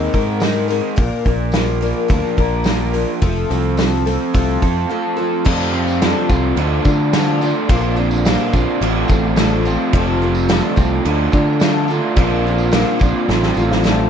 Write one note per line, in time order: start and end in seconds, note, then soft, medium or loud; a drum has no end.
0.00 0.13 G#3 medium
0.00 0.69 G#3 medium
0.00 0.13 C4 medium
0.00 0.98 C4 medium
0.00 0.13 D#4 medium
0.00 0.11 A#4 medium
0.00 3.17 A#4 medium
0.00 0.95 D#5 medium
0.00 0.95 G#5 medium
0.00 0.95 C6 medium
0.13 0.80 G#2 medium
0.13 0.40 C4 soft
0.13 0.41 D#4 soft
0.13 0.41 A#4 medium
0.13 kick medium
0.13 open hi-hat soft
0.40 0.69 G#3 medium
0.40 0.69 C4 medium
0.40 0.68 D#4 medium
0.40 0.67 A#4 medium
0.40 snare loud
0.40 open hi-hat medium
0.40 tambourine medium
0.68 0.98 G#3 medium
0.68 0.97 C4 soft
0.68 0.97 D#4 medium
0.68 0.97 A#4 medium
0.68 open hi-hat soft
0.95 1.09 A#1 medium
0.95 1.25 A#2 medium
0.95 1.25 F3 medium
0.95 1.25 A#3 medium
0.95 1.25 D4 medium
0.95 1.24 A#4 medium
0.95 3.18 D5 medium
0.95 5.41 F5 medium
0.95 3.19 D6 medium
0.95 kick loud
0.95 open hi-hat medium
1.25 1.92 A#1 medium
1.25 1.52 A#3 soft
1.25 1.53 D4 medium
1.25 1.53 A#4 medium
1.25 kick medium
1.25 open hi-hat soft
1.52 1.81 F3 medium
1.52 1.81 A#3 medium
1.52 1.81 D4 medium
1.52 1.80 A#4 medium
1.52 snare loud
1.52 open hi-hat medium
1.52 tambourine medium
1.81 2.09 A#3 soft
1.81 2.09 D4 soft
1.81 2.09 A#4 medium
1.81 open hi-hat soft
2.08 2.21 D2 medium
2.08 2.37 A#2 medium
2.08 2.37 F3 medium
2.08 2.38 A#3 medium
2.08 2.37 D4 medium
2.08 2.36 A#4 medium
2.08 kick loud
2.08 open hi-hat medium
2.37 3.04 A#1 medium
2.37 2.64 A#3 soft
2.37 2.65 D4 medium
2.37 2.65 A#4 medium
2.37 kick medium
2.37 open hi-hat soft
2.64 2.93 F3 medium
2.64 2.93 A#3 medium
2.64 2.94 D4 medium
2.64 2.92 A#4 medium
2.64 snare loud
2.64 open hi-hat medium
2.64 tambourine medium
2.93 3.21 F3 medium
2.93 3.22 A#3 soft
2.93 3.22 D4 medium
2.93 3.21 A#4 medium
2.93 open hi-hat soft
3.21 3.44 F1 medium
3.21 3.50 F2 medium
3.21 3.50 C3 medium
3.21 3.50 F3 medium
3.21 3.50 A3 medium
3.21 3.50 C4 medium
3.21 5.43 A4 medium
3.21 3.49 A4 medium
3.21 5.43 C5 medium
3.21 5.43 C6 medium
3.21 kick loud
3.21 open hi-hat medium
3.50 4.17 C2 medium
3.50 3.76 F3 soft
3.50 3.77 A3 soft
3.50 3.78 C4 soft
3.50 3.78 A4 medium
3.50 open hi-hat soft
3.77 4.05 F3 medium
3.77 4.06 A3 medium
3.77 4.06 C4 medium
3.77 4.05 A4 medium
3.77 snare loud
3.77 open hi-hat medium
3.77 tambourine medium
4.06 4.34 F3 soft
4.06 4.34 A3 medium
4.06 4.34 C4 medium
4.06 4.34 A4 medium
4.06 open hi-hat medium
4.34 4.56 C2 medium
4.34 4.62 F2 medium
4.34 4.62 C3 medium
4.34 4.62 F3 medium
4.34 4.62 A3 medium
4.34 4.61 C4 medium
4.34 4.88 F4 medium
4.34 4.61 A4 medium
4.34 kick loud
4.34 open hi-hat medium
4.62 4.84 F2 medium
4.62 4.88 F3 soft
4.62 4.89 A3 soft
4.62 4.90 C4 medium
4.62 4.90 A4 medium
4.62 kick medium
4.62 open hi-hat soft
4.89 5.17 F3 medium
4.89 5.17 A3 medium
4.89 5.17 C4 medium
4.89 5.45 F4 medium
4.89 5.15 A4 medium
5.17 5.44 F3 soft
5.17 5.44 A3 soft
5.17 5.44 C4 medium
5.17 5.45 A4 medium
5.45 5.73 F2 medium
5.45 6.12 F2 loud
5.45 6.28 C3 medium
5.45 5.73 D3 medium
5.45 5.73 F3 medium
5.45 5.73 A3 medium
5.45 5.73 C4 medium
5.45 11.01 F4 medium
5.45 5.72 F4 loud
5.45 6.56 C5 medium
5.45 11.01 D5 medium
5.45 7.67 A5 medium
5.45 kick loud
5.45 crash loud
5.45 tambourine soft
5.45 crash medium
5.60 tambourine soft
5.73 6.01 F3 medium
5.73 6.01 A3 medium
5.73 6.01 C4 medium
5.73 6.01 F4 medium
5.73 tambourine soft
5.88 tambourine medium
6.02 6.30 F2 medium
6.02 6.30 D3 medium
6.02 6.30 F3 medium
6.02 6.30 A3 medium
6.02 6.29 C4 loud
6.02 6.28 F4 loud
6.02 snare loud
6.02 tambourine loud
6.02 crash medium
6.29 6.52 C2 medium
6.29 6.57 F2 medium
6.29 6.57 C3 medium
6.29 6.56 F3 medium
6.29 6.57 A3 medium
6.29 6.58 C4 medium
6.29 6.57 F4 medium
6.29 kick medium
6.29 tambourine medium
6.56 6.79 D2 loud
6.56 7.40 D3 medium
6.56 6.85 F3 medium
6.56 6.86 A3 medium
6.56 6.85 D4 medium
6.56 6.84 F4 medium
6.56 7.69 A4 medium
6.56 crash medium
6.85 7.52 D3 medium
6.85 7.13 A3 soft
6.85 7.13 D4 medium
6.85 7.13 F4 medium
6.85 kick medium
6.85 tambourine medium
6.99 tambourine soft
7.13 7.41 D3 medium
7.13 7.42 F3 medium
7.13 7.42 A3 medium
7.13 7.42 D4 medium
7.13 7.41 F4 loud
7.13 snare loud
7.13 tambourine loud
7.13 crash medium
7.41 7.69 D3 medium
7.41 7.69 A3 soft
7.41 7.69 D4 medium
7.41 7.70 F4 medium
7.41 tambourine medium
7.69 8.36 A#1 loud
7.69 7.97 A#2 medium
7.69 8.52 D3 medium
7.69 7.97 F3 medium
7.69 8.53 A#3 medium
7.69 7.97 C4 medium
7.69 7.96 D4 loud
7.69 7.95 F4 medium
7.69 9.92 C5 medium
7.69 8.81 A#5 medium
7.69 kick loud
7.69 tambourine soft
7.69 crash medium
7.83 tambourine soft
7.96 8.26 C4 soft
7.96 8.25 D4 medium
7.96 8.25 F4 medium
7.96 tambourine soft
8.11 tambourine medium
8.25 8.54 A#2 medium
8.25 8.54 F3 medium
8.25 8.54 C4 medium
8.25 8.54 D4 medium
8.25 8.53 F4 loud
8.25 snare loud
8.25 tambourine loud
8.25 crash medium
8.53 8.65 A#1 medium
8.53 8.81 A#2 medium
8.53 8.81 D3 medium
8.53 8.81 A#3 medium
8.53 8.82 C4 medium
8.53 8.82 D4 medium
8.53 8.82 F4 medium
8.53 kick medium
8.53 tambourine medium
8.81 9.03 A1 loud
8.81 9.64 A2 medium
8.81 9.09 F3 medium
8.81 9.09 A3 medium
8.81 9.10 C4 medium
8.81 9.09 F4 medium
8.81 12.14 A5 medium
8.81 crash medium
9.08 9.76 A1 medium
9.08 9.37 A3 medium
9.08 9.38 C4 medium
9.08 9.37 F4 medium
9.08 kick medium
9.08 tambourine medium
9.12 9.38 F3 medium
9.23 tambourine soft
9.36 9.66 A2 medium
9.36 9.66 D3 medium
9.36 9.66 F3 medium
9.36 9.65 A3 medium
9.36 9.65 C4 medium
9.36 9.64 F4 loud
9.36 snare loud
9.36 tambourine loud
9.36 crash medium
9.51 tambourine soft
9.65 9.93 F3 soft
9.65 9.93 A3 medium
9.65 9.93 C4 medium
9.65 9.93 F4 medium
9.65 tambourine medium
9.70 9.94 A2 medium
9.93 10.60 F1 loud
9.93 10.21 F2 medium
9.93 10.76 C3 loud
9.93 10.21 D3 medium
9.93 10.21 F3 medium
9.93 10.22 A3 medium
9.93 10.22 C4 loud
9.93 10.21 F4 loud
9.93 11.04 C5 medium
9.93 kick loud
9.93 tambourine soft
9.93 crash medium
10.07 tambourine soft
10.21 10.49 F3 medium
10.21 10.49 A3 soft
10.21 10.49 C4 medium
10.21 10.49 F4 medium
10.21 tambourine soft
10.35 tambourine medium
10.49 10.77 F2 medium
10.49 10.77 D3 medium
10.49 10.77 F3 medium
10.49 10.77 A3 medium
10.49 10.77 C4 loud
10.49 10.77 F4 medium
10.49 snare loud
10.49 tambourine loud
10.49 crash medium
10.76 10.99 C2 medium
10.76 11.05 A3 medium
10.76 11.06 C4 medium
10.76 11.05 F4 medium
10.76 kick medium
10.76 tambourine medium
10.80 11.05 F2 medium
10.80 11.05 C3 medium
10.80 11.04 F3 medium
11.03 11.27 D2 loud
11.03 11.87 D3 loud
11.03 11.33 F3 medium
11.03 11.33 A3 medium
11.03 11.33 D4 medium
11.03 14.10 F4 medium
11.03 12.15 A4 medium
11.03 14.10 D5 medium
11.03 crash medium
11.07 11.32 F4 medium
11.32 12.00 D3 medium
11.32 11.61 A3 soft
11.32 11.61 D4 medium
11.32 11.61 F4 medium
11.32 kick medium
11.32 tambourine medium
11.47 tambourine soft
11.60 11.89 D3 medium
11.60 11.89 F3 medium
11.60 11.89 A3 medium
11.60 11.90 D4 medium
11.60 11.89 F4 medium
11.60 snare loud
11.60 tambourine medium
11.60 crash medium
11.88 12.16 D3 medium
11.88 12.18 D4 medium
11.88 12.17 F4 medium
11.88 tambourine medium
11.92 12.18 A3 soft
12.14 12.83 A#1 loud
12.14 12.45 A#2 medium
12.14 12.99 D3 medium
12.14 12.45 F3 medium
12.14 13.00 A#3 loud
12.14 12.45 C4 medium
12.14 14.10 C5 medium
12.14 13.27 A#5 medium
12.14 kick loud
12.14 tambourine soft
12.14 crash medium
12.19 12.46 D4 medium
12.19 12.46 F4 medium
12.30 tambourine soft
12.44 12.73 F4 medium
12.44 tambourine soft
12.48 12.72 C4 soft
12.48 12.73 D4 medium
12.58 tambourine medium
12.72 13.01 A#2 medium
12.72 13.01 F3 medium
12.72 13.01 C4 medium
12.72 13.01 D4 loud
12.72 13.00 F4 medium
12.72 snare loud
12.72 tambourine loud
12.72 crash medium
12.99 13.12 A#1 medium
12.99 13.25 A#2 medium
12.99 13.27 D3 medium
12.99 13.28 A#3 medium
12.99 13.30 C4 soft
12.99 13.29 D4 medium
12.99 13.29 F4 medium
12.99 kick medium
12.99 tambourine medium
13.26 13.51 A1 loud
13.26 14.10 A2 medium
13.26 13.57 F3 medium
13.26 14.10 A5 medium
13.26 snare medium
13.30 13.57 A3 medium
13.30 13.56 C4 medium
13.30 13.56 F4 medium
13.42 snare medium
13.42 tambourine soft
13.54 14.10 A1 medium
13.54 13.84 A3 medium
13.54 13.85 C4 medium
13.54 13.85 F4 medium
13.54 tambourine medium
13.59 13.84 F3 medium
13.69 snare medium
13.69 tambourine soft
13.84 14.10 A2 medium
13.84 14.10 D3 medium
13.84 14.10 F3 medium
13.84 14.10 A3 medium
13.84 14.10 C4 medium
13.84 14.10 F4 loud
13.84 snare medium
13.84 tambourine loud
13.98 tambourine soft